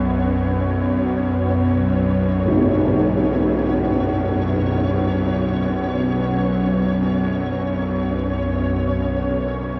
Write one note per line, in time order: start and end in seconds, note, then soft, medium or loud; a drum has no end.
0.00 9.80 B1 medium
0.00 9.80 F#2 medium
0.00 9.80 F#3 medium
0.00 9.80 B3 medium
0.00 9.80 C#4 medium
0.00 9.80 B4 medium
0.00 9.80 C#5 medium
0.00 9.80 F#5 medium
2.46 tam-tam medium